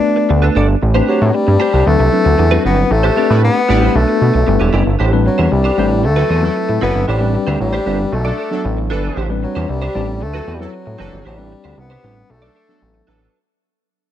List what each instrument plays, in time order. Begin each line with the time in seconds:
Already playing: tine electric piano A3 B3 D4 F#4 B4, bassoon D4
0.16 muted clean electric guitar stroke
0.29 analog synth bass D2, muted clean electric guitar stroke
0.42 clean electric guitar D4 A4 B4
0.55 analog synth bass G1, clean electric guitar D4 A4 D5
0.69 muted clean electric guitar stroke
0.82 analog synth bass A1, muted clean electric guitar stroke
0.94 tine electric piano A3 C4 D4 G4 B4, clean electric guitar D4 G4 C5
1.08 bassoon F#3, clean electric guitar D4 G4 C5
1.21 analog synth bass A2, muted clean electric guitar stroke
1.33 bassoon G3, muted clean electric guitar stroke
1.47 analog synth bass G2, muted clean electric guitar stroke
1.60 clean electric guitar D4 G4 C5
1.73 analog synth bass C2, clean electric guitar D4 G4 C5
1.86 analog synth bass D2, tine electric piano F#3 C4 D4 E4 B4, bassoon A3, muted clean electric guitar stroke
1.99 analog synth bass C2, muted clean electric guitar stroke
2.12 tine electric piano F#3 C4 D4 E4 B4
2.25 analog synth bass D2, muted clean electric guitar stroke
2.38 analog synth bass E2, muted clean electric guitar stroke
2.51 tine electric piano F#3 C4 D4 E4 B4, clean electric guitar C4 F#4 B4
2.64 analog synth bass G1, bassoon B3, clean electric guitar C4 F#4 B4
2.77 muted clean electric guitar stroke
2.91 analog synth bass A1, bassoon A3, muted clean electric guitar stroke
3.03 clean electric guitar D4 G4 C5
3.16 tine electric piano A3 C4 D4 G4 B4, clean electric guitar D4 G4 D5
3.29 analog synth bass A2, analog polysynth G3 E4 B4, muted clean electric guitar stroke
3.43 bassoon B3, muted clean electric guitar stroke
3.55 muted clean electric guitar stroke
3.68 analog synth bass A1, analog polysynth G3 E4 B4, tine electric piano A3 C4 D4 G4 B4, clean electric guitar D4 G4 D5
3.82 clean electric guitar D4 G4 C5
3.95 analog synth bass B1, tine electric piano A3 B3 D4 F#4 B4, bassoon A3, muted clean electric guitar stroke
4.08 muted clean electric guitar stroke
4.21 analog synth bass B2
4.34 analog synth bass B1, muted clean electric guitar stroke
4.47 analog synth bass G1, tine electric piano G3 B3 D4 E4 B4, muted clean electric guitar stroke
4.60 analog synth bass E1, clean electric guitar E4 G4 B4
4.73 analog synth bass F#1, clean electric guitar E4 G4 D5
4.86 analog synth bass G1, muted clean electric guitar stroke
4.99 analog synth bass A1, clean electric guitar D4 G4 C5
5.12 tine electric piano G3 C4 D4 B4, muted clean electric guitar stroke
5.25 bassoon F#3, muted clean electric guitar stroke
5.38 analog synth bass E2, clean electric guitar D4 G4 C5
5.51 analog synth bass C2, bassoon G3, muted clean electric guitar stroke
5.64 clean electric guitar D4 G4 C5
5.77 analog synth bass A1, tine electric piano G3 C4 D4 B4, clean electric guitar D4 G4 C5
5.90 muted clean electric guitar stroke
6.03 analog synth bass D2, bassoon A3, muted clean electric guitar stroke
6.16 analog polysynth F#3 E4 A4, clean electric guitar C4 F#4 B4
6.29 analog synth bass E2, clean electric guitar C4 F#4 B4
6.42 tine electric piano F#3 C4 E4 B4, analog polysynth F#3 E4 A4, muted clean electric guitar stroke
6.56 muted clean electric guitar stroke
6.69 analog synth bass A2, muted clean electric guitar stroke
6.81 analog synth bass F#1, analog polysynth F#3 E4 A4, bassoon B3, clean electric guitar C4 F#4 B4
6.95 analog synth bass G1, muted clean electric guitar stroke
7.08 analog synth bass A1, bassoon G3, clean electric guitar D4 G4 C5
7.20 tine electric piano G3 C4 D4 B4, muted clean electric guitar stroke
7.34 muted clean electric guitar stroke
7.47 analog synth bass D2, clean electric guitar D4 G4 C5
7.60 analog synth bass A1, bassoon G3, muted clean electric guitar stroke
7.73 clean electric guitar D4 G4 C5
7.86 analog synth bass G1, tine electric piano G3 C4 D4 B4, clean electric guitar D4 G4 C5
7.99 muted clean electric guitar stroke
8.12 analog synth bass B1, bassoon A3, muted clean electric guitar stroke
8.25 analog polysynth F#3 D4 A4, clean electric guitar D4 A4 D5
8.38 clean electric guitar D4 A4 D5
8.51 tine electric piano F#3 B3 D4 A4, analog polysynth F#3 D4 A4, muted clean electric guitar stroke
8.64 analog synth bass A1, muted clean electric guitar stroke
8.77 muted clean electric guitar stroke
8.90 analog synth bass G1, analog polysynth E3 D4 A4, clean electric guitar D4 A4 B4
9.03 clean electric guitar D4 A4 B4
9.16 analog synth bass A1, clean electric guitar D4 G4 C5
9.29 tine electric piano G3 C4 D4 B4, muted clean electric guitar stroke
9.42 bassoon F#3, muted clean electric guitar stroke
9.55 analog synth bass E2, clean electric guitar D4 G4 C5
9.68 analog synth bass C2, bassoon G3, muted clean electric guitar stroke
9.82 clean electric guitar D4 G4 C5
9.94 analog synth bass A1, tine electric piano G3 C4 D4 D5, clean electric guitar D4 G4 C5
10.08 muted clean electric guitar stroke
10.21 analog synth bass D2, bassoon A3, muted clean electric guitar stroke
10.33 analog polysynth F#3 E4 A4, clean electric guitar C4 F#4 B4
10.47 analog synth bass E2, clean electric guitar C4 F#4 B4
10.54 bassoon G3
10.60 tine electric piano F#3 C4 E4 B4, analog polysynth F#3 E4 A4, bassoon F#3, muted clean electric guitar stroke
10.73 muted clean electric guitar stroke
10.86 analog synth bass A2, muted clean electric guitar stroke
10.98 analog synth bass F#1, analog polysynth E3 D4 A4, clean electric guitar C4 F#4 B4
11.12 analog synth bass G1, muted clean electric guitar stroke
11.25 analog synth bass A1, bassoon G3, clean electric guitar D4 G4 C5
11.38 tine electric piano G3 C4 D4 B4, muted clean electric guitar stroke
11.51 muted clean electric guitar stroke
11.64 analog synth bass D2, clean electric guitar D4 G4 C5
11.77 analog synth bass C2, bassoon B3, muted clean electric guitar stroke
11.90 clean electric guitar D4 G4 C5
12.03 analog synth bass A1, tine electric piano G3 C4 D4 B4, clean electric guitar D4 G4 C5
12.16 muted clean electric guitar stroke
12.29 analog synth bass B1, bassoon A3, muted clean electric guitar stroke
12.42 analog polysynth F#3 D4 A4, clean electric guitar D4 A4 D5
12.55 clean electric guitar D4 A4 D5
12.68 tine electric piano F#3 B3 D4 A4, analog polysynth F#3 D4 A4
12.81 analog synth bass A1, muted clean electric guitar stroke
12.94 muted clean electric guitar stroke
13.07 analog synth bass A1, analog polysynth F#3 D4 A4, clean electric guitar D4 A4 B4
13.20 clean electric guitar D4 A4 B4